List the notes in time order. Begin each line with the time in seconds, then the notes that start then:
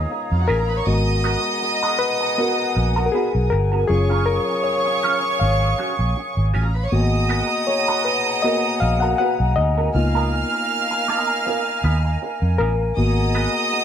Already playing: G#3 B3 D#4 F4 G#4 A#4 B4 C#5 D#5 F5 G#5 A#5 D#6
0.11 muted clean electric guitar stroke
0.31 F2 F4 F5
0.41 F#4 F#5
0.48 A1 B3 F4 G#4 A#4 G#5
0.59 A#4 A#5
0.69 B4 B5, muted clean electric guitar stroke
0.78 C#5 C#6
0.86 G#1 G#3 B3 F#4 G#4 D#5 F#5 G#5 D#6
1.24 B3 F#4 A#4
1.62 muted clean electric guitar stroke
1.83 B3 F#4 A#4
1.99 B4, muted clean electric guitar stroke
2.21 muted clean electric guitar stroke
2.38 B3 F#4 A#4
2.76 A#1, muted clean electric guitar stroke
2.96 B3 F#4 A#4
3.06 A#4
3.12 B3 F#4 G#4 B4
3.35 B1
3.50 G1 A#4, muted clean electric guitar stroke
3.72 B3 F#4 A#4
3.88 F#1 F#3 C#4 F4 G#4 C#5 F5 C#6 D#6, muted clean electric guitar stroke
4.10 F#3 C#4 F4
4.26 A#4, muted clean electric guitar stroke
4.48 muted clean electric guitar stroke
4.64 C#5
4.86 muted clean electric guitar stroke
5.03 F#3 C#4 F4
5.23 muted clean electric guitar stroke
5.39 G#1 F5, muted clean electric guitar stroke
5.78 F#3 C#4 F#4
5.99 A#1, muted clean electric guitar stroke
6.16 muted clean electric guitar stroke
6.37 G#1
6.54 A1 F#3 C#4 F4 G#4 G#5
6.64 A#4 A#5
6.74 B4 B5, muted clean electric guitar stroke
6.84 C#5 C#6
6.92 G#1 A#3 B3 F#4 G#4 D#5 F#5 G#5 A#5 D#6
7.29 B3 F#4 A#4
7.67 C#5, muted clean electric guitar stroke
7.88 B3 F#4 A#4
8.05 B4, muted clean electric guitar stroke
8.27 muted clean electric guitar stroke
8.42 A#3 B3 F#4 A#4 D#5
8.80 A#1 F5, muted clean electric guitar stroke
9.00 B3 F#4 A#4 F#5
9.18 B3 F#4 B4 F#5
9.40 B1
9.56 D2 D#5, muted clean electric guitar stroke
9.78 B3 F#4 A#4
9.95 C#2 A#3 B3 D#4 F4 A#4 D#5 F5 F6, muted clean electric guitar stroke
10.15 B3 F4 A#4
10.33 muted clean electric guitar stroke
10.53 muted clean electric guitar stroke
10.91 muted clean electric guitar stroke
11.08 B3 F4 A#4
11.29 muted clean electric guitar stroke
11.46 B3 F4 A#4
11.67 muted clean electric guitar stroke
11.84 D#2 B3 F4 B4
12.05 muted clean electric guitar stroke
12.22 muted clean electric guitar stroke
12.42 F2
12.58 A1 B3 F4 A#4
12.80 muted clean electric guitar stroke
12.97 G#1 A#3 B3 F#4 G#4 D#5 F#5 A#5 D#6
13.35 B3 F#4 A#4
13.73 muted clean electric guitar stroke